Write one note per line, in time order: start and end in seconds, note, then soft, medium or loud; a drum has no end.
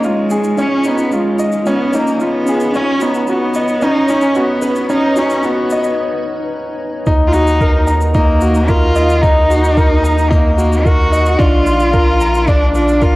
0.00 2.71 C#2 medium
0.00 0.58 C#4 loud
0.00 0.85 D#4 medium
0.00 7.03 D#4 medium
0.00 0.05 F4 medium
0.00 2.70 F4 medium
0.00 0.56 C#5 medium
0.00 1.39 D#5 medium
0.00 0.08 D#5 medium
0.00 shaker soft
0.05 0.62 G#3 loud
0.05 0.30 F4 medium
0.30 0.38 C#4 medium
0.30 0.57 G#4 medium
0.30 shaker medium
0.44 shaker soft
0.57 0.69 C#4 loud
0.57 0.84 C#4 loud
0.57 0.89 C#4 loud
0.57 2.72 D#5 medium
0.57 shaker soft
0.84 1.16 B3 medium
0.84 1.01 D#4 medium
0.84 0.96 F4 medium
0.84 shaker medium
0.98 shaker soft
1.11 1.69 G#3 medium
1.11 1.16 C#4 loud
1.11 1.38 F4 medium
1.11 shaker soft
1.39 1.65 D#5 medium
1.39 shaker medium
1.52 shaker soft
1.65 1.96 B3 loud
1.65 1.70 C#4 medium
1.65 1.82 C#4 loud
1.65 shaker soft
1.79 1.87 C#4 medium
1.92 2.23 A#3 loud
1.92 2.20 D#4 medium
1.92 2.00 C#5 loud
1.92 shaker medium
2.06 2.14 C#4 loud
2.06 shaker soft
2.19 2.76 B3 loud
2.19 2.46 F4 medium
2.19 2.24 D#5 loud
2.19 shaker soft
2.45 2.54 C#4 loud
2.45 2.74 G#4 medium
2.45 shaker medium
2.60 shaker soft
2.72 5.99 D#2 medium
2.72 2.84 C#4 loud
2.72 3.03 C#4 loud
2.72 3.01 C#4 loud
2.72 7.03 B4 medium
2.72 7.03 C#5 loud
2.72 shaker soft
2.99 3.28 B3 loud
2.99 3.17 D#4 medium
2.99 3.11 F#4 medium
2.99 shaker medium
3.14 shaker soft
3.26 3.85 B3 loud
3.26 3.32 C#4 loud
3.26 3.54 F#4 medium
3.26 shaker soft
3.54 3.81 D#5 medium
3.54 shaker medium
3.68 shaker soft
3.80 3.86 C#4 medium
3.80 3.98 C#4 loud
3.80 4.11 D#4 loud
3.80 shaker soft
3.94 4.02 C#4 medium
4.08 4.38 C#4 loud
4.08 4.35 D#4 medium
4.08 4.16 C#5 loud
4.08 shaker medium
4.21 4.30 C#4 loud
4.21 shaker soft
4.35 4.90 B3 loud
4.35 4.62 F#4 medium
4.35 4.40 D#5 loud
4.35 shaker soft
4.62 4.70 C#4 loud
4.62 4.89 B4 medium
4.62 shaker medium
4.75 shaker soft
4.89 5.16 C#4 loud
4.89 5.01 C#4 loud
4.89 5.20 D#4 loud
4.89 shaker soft
5.16 5.46 C#4 loud
5.16 5.33 D#4 medium
5.16 5.28 F#4 medium
5.16 shaker medium
5.30 shaker soft
5.43 5.99 B3 loud
5.43 5.48 C#4 loud
5.43 5.70 F#4 medium
5.43 shaker soft
5.70 5.98 D#5 medium
5.70 shaker medium
5.84 shaker soft
7.06 11.37 D#2 medium
7.06 7.32 D#4 loud
7.06 11.35 D#4 medium
7.06 11.35 A#4 medium
7.06 11.35 D#5 medium
7.06 kick loud
7.06 shaker soft
7.27 7.34 F4 medium
7.33 7.87 D#4 loud
7.33 7.49 F#4 medium
7.33 shaker medium
7.47 shaker soft
7.61 7.87 A#4 medium
7.61 kick loud
7.61 shaker soft
7.87 8.13 A#5 medium
7.87 shaker medium
8.01 shaker soft
8.14 8.69 A#3 loud
8.14 8.30 D#4 loud
8.14 kick loud
8.14 shaker soft
8.41 8.68 F#4 medium
8.41 shaker medium
8.55 shaker soft
8.68 9.23 F4 loud
8.68 8.95 A#4 medium
8.68 kick medium
8.68 shaker soft
8.96 9.22 D#5 medium
8.96 shaker medium
9.10 shaker soft
9.21 10.32 D#4 loud
9.21 9.49 D#4 loud
9.21 kick loud
9.21 shaker soft
9.50 9.66 F#4 medium
9.50 shaker medium
9.64 shaker soft
9.77 10.03 A#4 medium
9.77 kick loud
9.77 shaker soft
10.04 10.30 A#5 medium
10.04 shaker medium
10.19 shaker soft
10.30 10.56 A#3 loud
10.30 10.46 D#4 loud
10.30 kick loud
10.30 shaker soft
10.57 10.86 A#3 medium
10.57 10.84 F#4 medium
10.57 shaker medium
10.73 shaker soft
10.85 11.41 F#4 loud
10.85 11.11 A#4 medium
10.85 kick loud
10.85 shaker soft
11.12 11.38 D#5 medium
11.12 shaker medium
11.26 shaker soft
11.39 13.16 A#1 medium
11.39 11.65 D4 loud
11.39 13.16 D4 medium
11.39 12.49 F4 loud
11.39 13.16 A#4 medium
11.39 13.16 F5 medium
11.39 kick loud
11.39 shaker soft
11.66 11.82 F4 medium
11.66 shaker medium
11.80 shaker soft
11.93 12.19 A#4 medium
11.93 kick loud
11.93 shaker soft
12.21 12.46 A#5 medium
12.21 shaker medium
12.34 shaker soft
12.47 12.74 D4 loud
12.47 12.63 D4 loud
12.47 kick loud
12.47 shaker soft
12.75 13.03 D4 medium
12.75 13.00 F4 medium
12.75 shaker medium
12.88 shaker soft
13.02 13.16 F4 loud
13.02 13.16 A#4 medium
13.02 kick loud
13.02 shaker soft